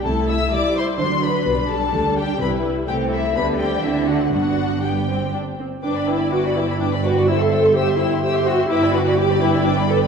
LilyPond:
<<
  \new Staff \with { instrumentName = "Violin section" } { \time 3/4 \key g \major \tempo 4 = 126 a''8 e'''8 d'''8 c'''8 c'''8 b''8~ | b''8 a''4 g''8 b''8 r8 | g''8 e''8 b''8 g''8 e''8 fis''8 | fis''4 g''4 r4 |
d'''16 b''16 d'''16 b''16 d'''16 b''16 d'''16 b''16 d'''16 b''16 d'''16 b''16 | e'''16 c'''16 e'''16 c'''16 e'''16 c'''16 e'''16 c'''16 e'''16 c'''16 e'''16 c'''16 | d'''16 b''16 d'''16 b''16 d'''16 b''16 d'''16 b''16 d'''16 b''16 d'''16 b''16 | }
  \new Staff \with { instrumentName = "Violin section" } { \time 3/4 \key g \major a'8 e''8 d''8 c''8 c''8 b'8~ | b'8 a'4 g'8 b'8 r8 | g'8 e'8 b'8 g'8 e'8 fis'8 | fis'4 g'4 r4 |
<b' g''>16 <d'' b''>16 <b' g''>16 <d'' b''>16 <b' g''>16 <d'' b''>16 <b' g''>16 <d'' b''>16 <b' g''>16 <d'' b''>16 <b' g''>16 <d'' b''>16 | <c'' g''>16 e''16 <c'' g''>16 e''16 <c'' g''>16 e''16 <c'' g''>16 e''16 <c'' g''>16 e''16 <c'' g''>16 e''16 | <b' g''>16 <d'' b''>16 <b' g''>16 <d'' b''>16 <b' g''>16 <d'' b''>16 <b' g''>16 <d'' b''>16 <b' g''>16 <d'' b''>16 <b' g''>16 <d'' b''>16 | }
  \new Staff \with { instrumentName = "Viola section" } { \time 3/4 \key g \major << { e'4 e'4 d'4 | d'2 e'4 | c'4 b8 c'8 d'4 | d'4 b8 c'8 d'8 c'8 |
d'8 e'8 fis'8 e'8 d'8 fis'8 | e'16 a'8. g'8 e'8 g'8 fis'8 | e'8 fis'8 g'8 e'8 d'8 a'8 | } \\ { a4 g4 fis4 | g2 g4 | a4 g4 c'4 | b4 r2 |
r2. | r2. | r2. | } >> }
  \new Staff \with { instrumentName = "Cello section" } { \clef bass \time 3/4 \key g \major c4 c,4 d4 | b,4 d4 c4 | c4 d4 d4 | g,2~ g,8 r8 |
g,2.~ | g,2. | g,2. | }
  \new Staff \with { instrumentName = "Double bass section" } { \clef bass \time 3/4 \key g \major c,4 c,4 d,4 | b,,4 d,4 c,4 | c,4 d,4 d,4 | g,,2~ g,,8 r8 |
g,,2.~ | g,,2. | g,,2. | }
>>